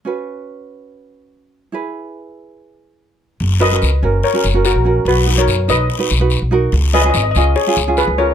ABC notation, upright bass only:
X:1
M:4/4
L:1/16
Q:1/4=144
K:B
V:1 name="Upright bass" clef=bass
z16 | z16 | F,,,4 C,,2 F,,,2 z2 F,,,3 A,,,3 | B,,,4 F,,2 B,,,2 z2 B,,,3 B,,,3 |
C,,4 G,,,2 C,,2 z2 C,,3 C,,3 |]